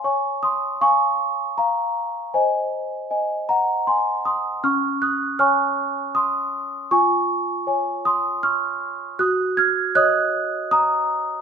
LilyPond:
\new Staff \with { instrumentName = "Celesta" } { \time 3/4 \key des \major \tempo 4 = 79 << { <aes'' des'''>8 <c''' ees'''>8 <aes'' des'''>4 <f'' bes''>4 | <ees'' aes''>4. <ges'' bes''>8 <aes'' c'''>8 <c''' ees'''>8 | <des''' f'''>8 <ees''' ges'''>8 <des''' f'''>4 <c''' ees'''>4 | <aes'' des'''>4. <c''' ees'''>8 <des''' f'''>8 r8 |
<ees''' ges'''>8 <f''' aes'''>8 <ees''' ges'''>4 <bes'' ees'''>4 | } \\ { des''4 f''2 | c''4 <ees'' aes''>2 | des'4 <des'' aes''>2 | f'4 <des'' aes''>2 |
ges'4 <des'' ees''>2 | } >> }